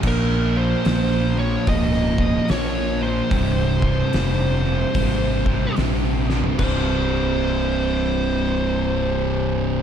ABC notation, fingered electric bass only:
X:1
M:4/4
L:1/8
Q:"Swing" 1/4=73
K:Cm
V:1 name="Fingered electric bass" clef=bass
B,,,2 B,,,2 _D,,,2 B,,,2 | C,,,2 F,,,2 A,,,2 B,,,2 | C,,,8 |]